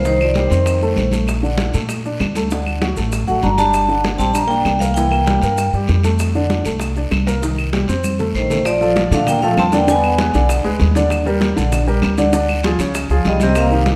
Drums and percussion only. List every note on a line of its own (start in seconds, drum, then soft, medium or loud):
0.04 high bongo medium
0.04 long guiro medium
0.04 maracas medium
0.20 high bongo soft
0.20 high conga soft
0.20 claves medium
0.20 maracas soft
0.34 high bongo soft
0.34 high conga medium
0.34 short guiro medium
0.34 maracas soft
0.50 short guiro medium
0.50 maracas medium
0.66 high bongo medium
0.66 high conga soft
0.66 long guiro medium
0.66 claves medium
0.66 maracas medium
0.81 high bongo soft
0.81 high conga soft
0.81 maracas soft
0.96 high bongo soft
0.96 low bongo medium
0.96 high conga medium
0.96 short guiro medium
0.96 maracas soft
1.11 high bongo soft
1.11 high conga medium
1.11 short guiro medium
1.11 maracas medium
1.27 high bongo medium
1.27 high conga soft
1.27 long guiro medium
1.27 claves medium
1.27 maracas medium
1.42 high bongo soft
1.42 high conga soft
1.42 maracas soft
1.58 high bongo medium
1.58 high conga medium
1.58 short guiro medium
1.58 maracas soft
1.73 high conga soft
1.73 short guiro medium
1.73 maracas medium
1.89 high bongo medium
1.89 high conga soft
1.89 long guiro medium
1.89 claves soft
1.89 maracas medium
2.04 high bongo soft
2.04 high conga soft
2.04 maracas soft
2.19 high bongo soft
2.19 low bongo medium
2.19 high conga medium
2.19 short guiro medium
2.19 claves medium
2.19 maracas soft
2.35 high bongo soft
2.35 high conga medium
2.35 short guiro medium
2.35 maracas medium
2.51 high bongo medium
2.51 high conga soft
2.51 long guiro medium
2.51 maracas medium
2.66 high bongo soft
2.66 high conga soft
2.66 claves medium
2.66 maracas soft
2.82 high bongo medium
2.82 high conga medium
2.82 short guiro medium
2.82 maracas soft
2.97 short guiro medium
2.97 maracas medium
3.12 high bongo medium
3.12 high conga soft
3.12 long guiro medium
3.12 claves medium
3.12 maracas medium
3.28 high bongo soft
3.28 high conga soft
3.28 maracas soft
3.42 high bongo soft
3.42 low bongo medium
3.42 high conga medium
3.42 short guiro medium
3.42 maracas soft
3.58 high bongo soft
3.58 high conga medium
3.58 short guiro medium
3.58 maracas medium
3.73 high bongo medium
3.73 high conga soft
3.73 long guiro medium
3.73 claves medium
3.73 maracas medium
3.89 high bongo soft
3.89 high conga soft
3.89 maracas soft
4.04 high bongo soft
4.04 high conga medium
4.04 short guiro medium
4.04 maracas soft
4.19 high conga soft
4.19 short guiro medium
4.19 maracas medium
4.35 high bongo medium
4.35 high conga soft
4.35 claves medium
4.35 maracas medium
4.50 high bongo soft
4.50 high conga soft
4.50 maracas soft
4.65 high bongo soft
4.65 low bongo medium
4.65 high conga medium
4.65 short guiro medium
4.65 claves medium
4.65 maracas soft
4.80 high bongo soft
4.80 high conga medium
4.80 short guiro medium
4.80 maracas medium
4.95 high bongo medium
4.95 high conga soft
4.95 long guiro medium
4.95 maracas medium
5.12 high bongo soft
5.12 high conga soft
5.12 claves medium
5.12 maracas soft
5.26 high bongo medium
5.26 high conga medium
5.26 short guiro medium
5.26 maracas soft
5.42 short guiro medium
5.42 maracas medium
5.57 high bongo medium
5.57 high conga soft
5.57 long guiro medium
5.57 claves medium
5.57 maracas medium
5.73 high bongo soft
5.73 high conga soft
5.73 maracas soft
5.87 high bongo soft
5.87 low bongo medium
5.87 high conga medium
5.87 short guiro medium
5.87 maracas soft
6.03 high bongo soft
6.03 high conga medium
6.03 short guiro medium
6.03 maracas medium
6.19 high bongo medium
6.19 high conga soft
6.19 long guiro medium
6.19 claves medium
6.19 maracas medium
6.35 high bongo soft
6.35 high conga soft
6.35 maracas soft
6.50 high bongo medium
6.50 high conga medium
6.50 short guiro medium
6.50 maracas soft
6.65 high conga soft
6.65 short guiro medium
6.65 maracas medium
6.80 high bongo medium
6.80 high conga soft
6.80 long guiro medium
6.80 claves medium
6.80 maracas medium
6.96 high bongo soft
6.96 high conga soft
6.96 maracas soft
7.11 high bongo soft
7.11 low bongo medium
7.11 high conga medium
7.11 short guiro medium
7.11 claves medium
7.11 maracas soft
7.27 high bongo soft
7.27 high conga medium
7.27 short guiro medium
7.27 maracas medium
7.42 high bongo medium
7.42 high conga soft
7.42 long guiro medium
7.42 maracas medium
7.58 high bongo soft
7.58 high conga soft
7.58 claves medium
7.58 maracas soft
7.73 high bongo medium
7.73 high conga medium
7.73 short guiro medium
7.73 maracas soft
7.88 high bongo medium
7.88 short guiro medium
7.88 maracas medium
8.04 high conga medium
8.04 long guiro medium
8.04 claves soft
8.04 maracas medium
8.19 low conga medium
8.19 maracas soft
8.35 short guiro medium
8.35 maracas soft
8.50 low bongo medium
8.50 low conga medium
8.50 short guiro medium
8.50 maracas medium
8.65 high bongo medium
8.65 high conga soft
8.65 long guiro medium
8.65 claves medium
8.65 maracas medium
8.81 high bongo soft
8.81 high conga soft
8.81 maracas soft
8.96 high bongo medium
8.96 high conga medium
8.96 short guiro medium
8.96 maracas soft
9.12 high conga soft
9.12 short guiro medium
9.12 maracas medium
9.27 high bongo medium
9.27 high conga soft
9.27 low conga medium
9.27 long guiro medium
9.27 claves medium
9.27 maracas medium
9.42 high bongo soft
9.42 high conga soft
9.42 maracas soft
9.57 high bongo soft
9.57 low bongo medium
9.57 high conga medium
9.57 short guiro medium
9.57 claves medium
9.57 maracas soft
9.72 high bongo soft
9.72 high conga medium
9.72 short guiro medium
9.72 maracas medium
9.87 high bongo medium
9.87 high conga soft
9.87 long guiro medium
9.87 maracas medium
10.03 high bongo soft
10.03 high conga soft
10.03 claves medium
10.03 maracas soft
10.18 high bongo medium
10.18 high conga medium
10.18 short guiro medium
10.18 maracas soft
10.34 short guiro medium
10.34 maracas medium
10.49 high bongo medium
10.49 high conga soft
10.49 long guiro medium
10.49 claves medium
10.49 maracas medium
10.64 high bongo soft
10.64 high conga soft
10.64 maracas soft
10.79 high bongo soft
10.79 low bongo medium
10.79 high conga medium
10.79 short guiro medium
10.79 maracas soft
10.95 high bongo soft
10.95 high conga medium
10.95 short guiro medium
10.95 maracas medium
11.10 high bongo medium
11.10 high conga soft
11.10 long guiro medium
11.10 claves medium
11.10 maracas medium
11.26 high bongo soft
11.26 high conga soft
11.26 maracas soft
11.41 high bongo medium
11.41 high conga medium
11.41 short guiro medium
11.41 maracas soft
11.57 high conga soft
11.57 short guiro medium
11.57 maracas medium
11.72 high bongo medium
11.72 high conga soft
11.72 low conga medium
11.72 long guiro medium
11.72 claves medium
11.72 maracas medium
11.88 high bongo soft
11.88 high conga soft
11.88 maracas soft
12.02 high bongo soft
12.02 low bongo medium
12.02 high conga medium
12.02 short guiro medium
12.02 claves medium
12.02 maracas soft
12.18 high bongo soft
12.18 high conga medium
12.18 short guiro medium
12.18 maracas medium
12.33 high bongo medium
12.33 high conga soft
12.33 long guiro medium
12.33 maracas medium
12.49 high bongo soft
12.49 high conga soft
12.49 claves medium
12.49 maracas soft
12.63 high bongo medium
12.63 high conga loud
12.63 short guiro medium
12.63 maracas soft
12.79 short guiro medium
12.79 maracas medium
12.95 high bongo medium
12.95 high conga soft
12.95 claves medium
12.95 maracas medium
13.10 high bongo soft
13.10 high conga soft
13.10 maracas soft
13.25 high bongo soft
13.25 low bongo medium
13.25 high conga medium
13.25 short guiro medium
13.25 maracas soft
13.40 high bongo soft
13.40 high conga medium
13.40 short guiro medium
13.40 maracas medium
13.55 high bongo medium
13.55 high conga soft
13.55 long guiro medium
13.55 claves medium
13.55 maracas medium
13.71 high bongo soft
13.71 high conga soft
13.71 maracas soft
13.86 high bongo medium
13.86 high conga medium
13.86 short guiro medium
13.86 maracas soft